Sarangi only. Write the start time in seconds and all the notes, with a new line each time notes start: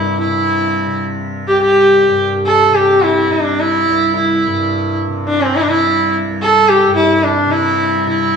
Already playing: E4
0.20 E4
1.48 G4
1.62 G4
2.46 A4
2.75 G4
3.04 E4
3.33 D4
3.60 E4
4.16 E4
5.28 D4
5.42 C4
5.55 E4
5.62 D4
5.70 E4
6.42 A4
6.69 G4
6.96 E4
7.24 D4
7.51 E4
8.09 E4